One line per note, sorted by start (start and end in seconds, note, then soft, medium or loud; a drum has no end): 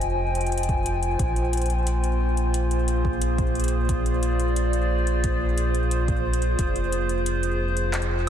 0.00 1.16 F1 medium
0.00 8.29 F4 medium
0.00 8.29 C5 medium
0.00 1.19 D#5 medium
0.00 3.35 G5 medium
0.00 2.42 G#5 medium
0.00 closed hi-hat soft
0.35 closed hi-hat soft
0.41 closed hi-hat soft
0.46 closed hi-hat soft
0.52 closed hi-hat soft
0.58 closed hi-hat medium
0.63 closed hi-hat medium
0.69 kick loud
0.69 closed hi-hat soft
0.86 closed hi-hat medium
1.03 closed hi-hat soft
1.19 6.55 A#1 medium
1.19 8.29 A#3 medium
1.19 kick loud
1.19 closed hi-hat medium
1.36 closed hi-hat soft
1.53 closed hi-hat medium
1.57 closed hi-hat soft
1.62 closed hi-hat soft
1.66 closed hi-hat soft
1.70 closed hi-hat soft
1.87 closed hi-hat medium
2.04 closed hi-hat soft
2.37 closed hi-hat soft
2.44 7.88 G#4 medium
2.54 closed hi-hat medium
2.71 closed hi-hat soft
2.88 closed hi-hat medium
3.05 kick medium
3.22 closed hi-hat medium
3.38 kick loud
3.38 closed hi-hat soft
3.55 closed hi-hat soft
3.60 6.59 D5 medium
3.60 closed hi-hat soft
3.64 closed hi-hat soft
3.68 closed hi-hat medium
3.89 kick loud
3.89 closed hi-hat medium
4.06 closed hi-hat soft
4.23 closed hi-hat medium
4.40 closed hi-hat soft
4.56 closed hi-hat medium
4.73 closed hi-hat soft
5.07 closed hi-hat soft
5.24 kick loud
5.24 closed hi-hat medium
5.58 closed hi-hat medium
5.75 closed hi-hat soft
5.91 closed hi-hat medium
6.08 kick loud
6.08 closed hi-hat soft
6.33 closed hi-hat medium
6.42 closed hi-hat soft
6.59 8.29 F1 medium
6.59 kick loud
6.59 closed hi-hat medium
6.76 closed hi-hat soft
6.92 closed hi-hat medium
7.09 closed hi-hat soft
7.26 closed hi-hat medium
7.43 closed hi-hat soft
7.77 closed hi-hat soft
7.92 8.29 G5 medium
7.92 clap loud
7.92 closed hi-hat medium
8.02 closed hi-hat soft
8.16 8.29 D#5 medium